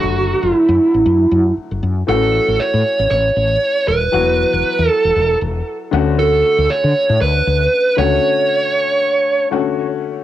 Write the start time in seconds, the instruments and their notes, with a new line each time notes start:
Already playing: grand piano D3 F#3 A3 F#4, lead electric guitar F#4
0.03 fretless electric bass F#1
0.43 fretless electric bass F#1
0.52 lead electric guitar E4, muted fretless electric bass stroke
0.69 fretless electric bass F#2
0.94 fretless electric bass A1
1.06 fretless electric bass F#2
1.31 fretless electric bass F#2
1.57 muted fretless electric bass stroke
1.71 fretless electric bass F#1
1.83 fretless electric bass F#2
2.07 fretless electric bass A1, grand piano E3 A3 C#4 F#4, lead electric guitar A4
2.48 fretless electric bass A1
2.60 lead electric guitar C#5
2.74 fretless electric bass A2
2.99 fretless electric bass A1
3.11 fretless electric bass A1, lead electric guitar C#5
3.36 fretless electric bass A1
3.87 fretless electric bass D#1, lead electric guitar B4
4.12 fretless electric bass E1, grand piano E3 F#3 B3 F#4
4.53 fretless electric bass E1
4.65 muted fretless electric bass stroke
4.79 fretless electric bass E2
4.88 lead electric guitar A4
5.04 fretless electric bass E1
5.16 fretless electric bass E1
5.41 fretless electric bass E1
5.91 fretless electric bass D2, grand piano D3 A3 C#4 F#4
6.19 lead electric guitar A4
6.58 fretless electric bass D2
6.70 lead electric guitar C#5
6.84 fretless electric bass D3
7.09 fretless electric bass A2
7.21 fretless electric bass D2, lead electric guitar B4
7.47 fretless electric bass D2
7.97 fretless electric bass C#2, grand piano D3 A3 C#4 F#4, lead electric guitar C#5
9.51 grand piano D3 A3 C#4 F#4